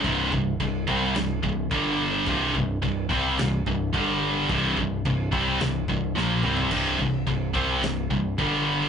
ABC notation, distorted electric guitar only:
X:1
M:4/4
L:1/8
Q:1/4=108
K:Gphr
V:1 name="Distorted electric guitar" clef=bass
[C,,G,,C,] [C,,G,,] [C,,G,,] [C,G,C] [C,,G,,] [C,,G,,] [G,,D,G,]2 | [C,,G,,C,] [C,,G,,] [C,,G,,] [C,G,C] [C,,G,,] [C,,G,,] [G,,D,G,]2 | [C,,G,,C,] [C,,G,,] [C,,G,,] [C,G,C] [C,,G,,] [C,,G,,] [B,,F,B,] [C,G,C] | [C,,G,,C,] [C,,G,,] [C,,G,,] [C,G,C] [C,,G,,] [C,,G,,] [G,,D,G,]2 |]